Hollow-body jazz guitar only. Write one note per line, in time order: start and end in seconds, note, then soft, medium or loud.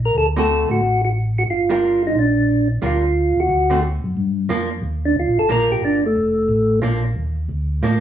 0.36 0.79 D3 medium
0.36 0.80 A3 medium
0.36 0.80 C4 medium
0.36 0.80 F#4 medium
1.69 2.13 G3 soft
1.69 2.13 D4 soft
1.69 2.13 F4 medium
1.69 2.13 A#4 medium
2.82 3.01 G3 soft
2.82 3.01 D4 soft
2.82 3.01 F4 medium
2.82 3.02 A#4 medium
3.70 3.81 D3 medium
3.70 3.81 A3 medium
3.70 3.81 C4 medium
3.70 3.82 F#4 medium
4.49 4.68 F3 medium
4.49 4.69 A#3 medium
4.49 4.69 D4 medium
5.49 5.99 F3 medium
5.49 6.00 A#3 medium
5.49 6.00 D4 medium
6.82 7.01 F3 medium
6.82 7.02 A#3 medium
6.82 7.02 D4 medium
7.83 8.00 F3 medium
7.83 8.00 A#3 medium
7.83 8.00 D4 medium